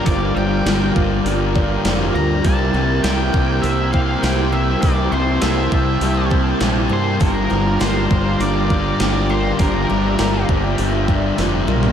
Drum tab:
HH |o---o---o---o---|o---o---o---o---|o---o---o---o---|o---o---o---o---|
SD |----o-------o---|--o-o-------o---|----o-------o---|--o-o-------o---|
T2 |----------------|----------------|----------------|----------------|
FT |----------------|----------------|----------------|----------------|
BD |o-----o---o-----|o-----o---o-----|o-----o---o-----|o-----o---o-----|

HH |o---o---o---o---|
SD |----o-------o---|
T2 |--------------o-|
FT |---------------o|
BD |o-----o---o-----|